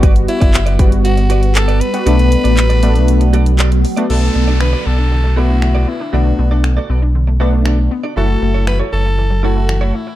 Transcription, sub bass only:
X:1
M:4/4
L:1/16
Q:1/4=118
K:Bm
V:1 name="Sub bass" clef=bass
G,,,3 F,,,4 G,,,8- G,,, | B,,,3 A,,,4 B,,,8- B,,, | B,,,2 B,,,4 B,,,8- B,,,2 | B,,,2 B,,,4 B,,,8- B,,,2 |
F,,,2 F,,,4 F,,,8- F,,,2 |]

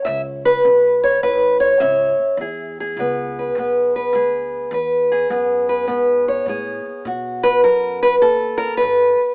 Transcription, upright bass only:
X:1
M:4/4
L:1/8
Q:"Swing" 1/4=103
K:E
V:1 name="Upright bass" clef=bass
C,,2 B,,,2 A,,,2 C,, z | E,,2 C,,2 B,,,2 =D,,2 | E,,2 F,,2 G,,2 A,, z | B,,2 F,,2 D,,2 G,,, z |]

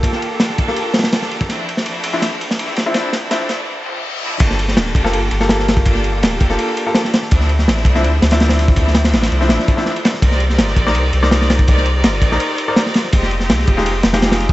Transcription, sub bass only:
X:1
M:4/4
L:1/8
Q:1/4=165
K:Gm
V:1 name="Sub bass" clef=bass
z8 | z8 | z8 | G,,,2 D,,, F,,, G,,, G,,,3- |
G,,,2 D,,, F,,, z4 | D,,2 A,,, C,, D,, D,,3- | D,,2 A,,, C,, A,,, z3 | C,,2 G,,, B,,, C,, C,,3- |
C,,2 G,,, B,,, z4 | F,,,2 C,, E,,, F,,, F,,,3 |]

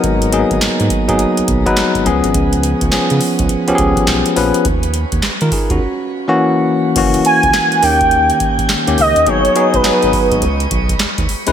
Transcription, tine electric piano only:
X:1
M:4/4
L:1/16
Q:"Swing 16ths" 1/4=104
K:G#dor
V:1 name="Tine electric piano"
[F,B,DA]2 [F,A,B,DG]4- [F,A,B,DG] [F,B,DG]4 [F,B,DB]3 [E,B,CG]2- | [E,B,CG]4 [E,B,CG]4- [E,B,CG] [E,B,C=G^G]4- [E,B,C=G^G] [E,B,CB]2 | z4 z [EA] [DG] [CF]2 z2 [=E,A,CF]4- [E,A,CF] | [K:G#m] [E,A,CF]6 [D,A,C=G]6- [D,A,CG] [D,A,CG]3 |
[F,B,DG]2 [F,B,DG]2 [F,B,DG]4 z6 z [G,CEB] |]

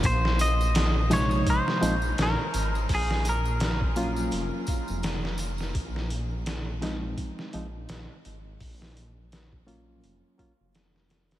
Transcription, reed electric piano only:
X:1
M:4/4
L:1/8
Q:"Swing 16ths" 1/4=84
K:Fphr
V:1 name="Reed electric piano"
z3 [C,F,A,E]2 [F,A,CE] z2 | z3 [G,B,DF]2 z3 | z3 [F,A,CE]2 [F,A,CE] z2 | z3 [G,B,DF]2 [G,B,DF] z2 |]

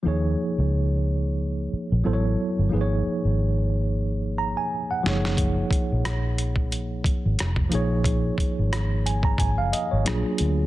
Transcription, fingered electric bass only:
X:1
M:4/4
L:1/16
Q:"Swing 16ths" 1/4=90
K:Ebm
V:1 name="Fingered electric bass" clef=bass
E,,2 z D,,6- D,, z B,,, =A,,,2 z =G,,, | A,,,2 z A,,,8 z3 G,,,2- | G,,,2 z B,,,6- B,,, z A,,, F,,,2 B,,,2- | B,,,2 z A,,,4- A,,, A,,, G,,, z A,,, B,,, z =D,,2 |]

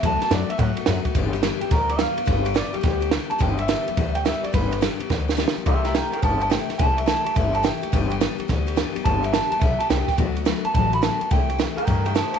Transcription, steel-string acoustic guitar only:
X:1
M:4/4
L:1/8
Q:"Swing" 1/4=212
K:G
V:1 name="Steel-string acoustic guitar"
[D,F,A,B,F] [A,B,F] [D,F,A,B,F] [A,B,F] [F,A,B,F] [A,B,F] [D,F,A,B,F] [A,B,F] | [G,,D,E,G,B,G] [E,G,B,G] [G,,D,E,G,B,G] [E,G,B,G] [E,G,B,G] [E,G,B,G] [G,,D,E,G,B,G] [E,G,B,G] | [G,,D,E,G,B,G] [E,G,B,G] [G,,D,E,G,B,G] [E,G,B,G] [E,G,B,G] [E,G,B,G] [G,,D,E,G,B,G] [E,G,B,G] | [G,,D,E,G,B,G] [E,G,B,G] [G,,D,E,G,B,G] [E,G,B,G] [E,G,B,G] [E,G,B,G] [G,,D,E,G,B,G] [E,G,B,G] |
[G,,D,E,G,B,G] [E,G,B,G] [G,,D,E,G,B,G] [E,G,B,G] [E,G,B,G] [E,G,B,G] [G,,D,E,G,B,G] [E,G,B,G] | [C,E,A,EG] [A,EG] [C,E,A,EG] [A,EG] [E,A,EG] [A,EG] [C,E,A,EG] [A,EG] | [C,E,A,EG] [A,EG] [C,E,A,EG] [A,EG] [E,A,EG] [A,EG] [C,E,A,EG] [A,EG] | [G,,D,E,G,B,G] [E,G,B,G] [G,,D,E,G,B,G] [E,G,B,G] [E,G,B,G] [E,G,B,G] [G,,D,E,G,B,G] [E,G,B,G] |
[G,,D,E,G,B,G] [E,G,B,G] [G,,D,E,G,B,G] [E,G,B,G] [E,G,B,G] [E,G,B,G] [G,,D,E,G,B,G] [E,G,B,G] | [D,F,A,B,F] [A,B,F] [D,F,A,B,F] [A,B,F] [F,A,B,F] [A,B,F] [D,F,A,B,F] [A,B,F] | [C,E,A,EG] [A,EG] [C,E,A,EG] [EG] [E,A,EG] [A,EG] [C,E,A,EG] [A,EG] |]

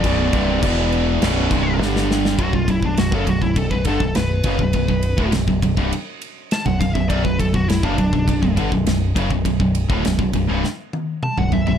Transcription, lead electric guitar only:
X:1
M:4/4
L:1/16
Q:1/4=102
K:Bm
V:1 name="Lead electric guitar"
d12 z4 | F ^E =E D F A F E A B A2 B4- | B4 z8 a f ^e =e | d B A F E D D4 z6 |
z12 a f e e |]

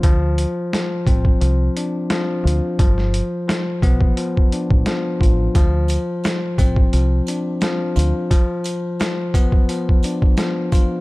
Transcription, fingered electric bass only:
X:1
M:4/4
L:1/16
Q:"Swing 16ths" 1/4=87
K:Ddor
V:1 name="Fingered electric bass" clef=bass
D,,3 z3 A,,,2 C,,2 z4 D,, z | G,,,3 z3 B,,,2 z3 A,,, z2 A,,,2 | D,,3 z3 A,,,2 C,,2 z4 D,, z | z16 |]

